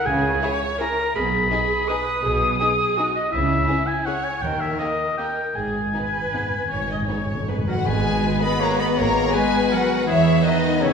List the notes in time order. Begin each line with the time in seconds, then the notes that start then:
0.06 C#2 C#3 G#4 G#5
0.42 E4 G#4 C#5
0.80 E4 G#4 A#4 A#5
1.15 B1 B2 G#4 B5
1.51 D#4 G#4
1.88 D#4 G#4 B4 D#6
2.24 B1 B2 G#4
2.60 D#4 G#4
2.97 D#4 F#4 G#4
3.16 D#5
3.32 C#2 C#3 E4 E5
3.68 C#4 G#4
3.87 G#5
4.06 C#4 G#4 C#5 F#5
4.24 G#5
4.42 D#2 D#3 A#4 G5
4.60 E5
4.78 A#3 D#4 G4 D#5
5.17 A#3 D#4 G4 A#4 G5
5.55 G#1 G#2 G#4 G#5
5.64 G#2
5.72 G#2
5.80 G#2
5.87 G#2
5.93 G#2 B3 D#4 G#4 B4
6.02 G#2
6.11 G#2
6.19 G#2
6.26 G#2
6.33 G#2 B3 D#4 G#4
6.42 G#2
6.50 G#2
6.58 G#2
6.65 G#2
6.70 G#1 G#2 C#5
6.79 G#2
6.87 G#2 D#5
6.94 G#2
7.02 G#2
7.09 G#2 B3 D#4 G#4 C#5
7.18 G#2
7.26 G#2
7.35 G#2
7.43 G#2
7.48 G#2 B3 D#4 G#4 B4
7.58 G#2
7.66 G#2 F#3 F#4 A#4 F#5
7.74 G#2
7.85 G#1 G#2 G#3 B3 G#4 B4 G#5
8.23 B4
8.41 B3 B4 D#5 B5
8.60 A#3 A#4 C#5 A#5
8.78 B3 B4 D#5 B5
8.97 G#1 A#3 A#4 C#5 A#5
9.32 G#3 G#4 B4 G#5
9.72 F#3 F#4 A#4 F#5
10.07 E2 E3 G#3 B3 E4 G#4 C#5 E5
10.42 D#3 D#4 F#4 B4 D#5
10.80 C#3 C#4 E4 C#5